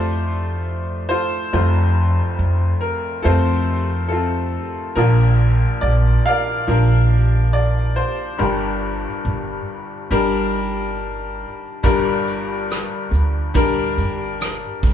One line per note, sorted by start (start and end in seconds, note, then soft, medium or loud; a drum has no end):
0.00 1.49 F1 soft
0.00 1.12 F2 medium
0.00 1.49 F2 medium
0.00 1.53 A3 medium
0.00 1.11 F4 medium
0.00 1.07 A4 medium
0.00 1.09 C5 medium
0.00 0.62 D5 medium
1.09 1.52 F4 soft
1.09 2.78 A4 soft
1.09 1.52 C5 medium
1.53 4.93 F1 medium
1.53 4.93 F2 medium
1.53 2.19 F2 medium
1.53 2.97 A3 soft
1.53 2.97 F4 soft
1.53 2.97 C5 medium
2.39 2.72 F2 medium
2.81 3.21 A#4 medium
3.23 4.56 F2 medium
3.23 4.69 A3 medium
3.23 4.10 C4 medium
3.23 4.11 F4 medium
3.23 4.07 A4 medium
3.23 4.69 C5 medium
4.08 4.93 C4 soft
4.08 4.93 F4 soft
4.08 4.70 A4 medium
4.96 5.62 A#1 medium
4.96 8.36 A#1 soft
4.96 8.36 A#2 soft
4.96 6.41 F3 medium
4.96 6.41 D4 medium
4.96 6.66 F4 medium
4.96 5.78 A#4 medium
5.81 6.16 A#1 medium
5.81 6.26 D5 medium
6.26 6.67 A#4 medium
6.26 7.52 D5 medium
6.26 7.58 F5 loud
6.67 7.99 A#1 medium
6.67 8.11 F3 medium
6.67 8.12 D4 medium
6.67 8.12 A#4 medium
7.53 7.98 D5 medium
7.96 8.36 C5 medium
8.38 11.80 G1 medium
8.38 9.05 G1 medium
8.38 11.80 G2 soft
8.38 9.82 G3 medium
8.38 8.40 D4 soft
8.38 10.08 G4 medium
8.38 9.83 A#4 medium
8.42 10.08 D4 soft
9.25 9.58 G1 medium
10.11 11.43 G1 medium
10.11 11.56 G3 medium
10.11 11.56 D4 medium
10.11 11.56 A#4 medium
11.83 12.82 G1 medium
11.83 14.94 G1 medium
11.83 14.94 G2 medium
11.83 13.27 G3 medium
11.83 13.28 D4 medium
11.83 13.28 A#4 medium
11.83 kick medium
11.83 closed hi-hat medium
12.27 closed hi-hat soft
12.70 cross-stick medium
12.70 closed hi-hat medium
13.11 13.99 D2 medium
13.11 closed hi-hat soft
13.54 14.94 G3 medium
13.54 14.94 D4 medium
13.54 14.94 A#4 medium
13.54 kick medium
13.54 closed hi-hat medium
13.98 14.63 G1 medium
13.98 closed hi-hat soft
14.40 cross-stick medium
14.40 closed hi-hat medium
14.83 14.94 G2 medium
14.83 kick medium
14.83 closed hi-hat soft